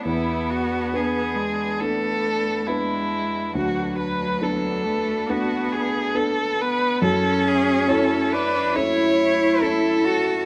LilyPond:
<<
  \new Staff \with { instrumentName = "Violin" } { \time 4/4 \key b \dorian \tempo 4 = 69 e'8 fis'8 gis'4 a'4 e'4 | fis'8 b'8 a'4 fis'8 gis'8 a'8 b'8 | a'8 gis'8 a'8 b'8 cis''4 a'4 | }
  \new Staff \with { instrumentName = "String section" } { \time 4/4 \key b \dorian <b d' b'>1 | <a d' b'>1 | <a e' cis''>1 | }
  \new Staff \with { instrumentName = "Upright piano" } { \time 4/4 \key b \dorian e,4 <b d' b'>4 <b d' a'>4 <b d' b'>4 | d,4 <b d' a'>4 <a b d'>4 <b d' a'>4 | fis,4 <e' a' cis''>4 <cis' e' a'>4 <cis' e' a'>4 | }
  \new Staff \with { instrumentName = "Cello" } { \time 4/4 \key b \dorian b4. gis8 a4 gis4 | fis4. a8 b4 r8 b8 | cis'4. d'8 e'4. fis'8 | }
>>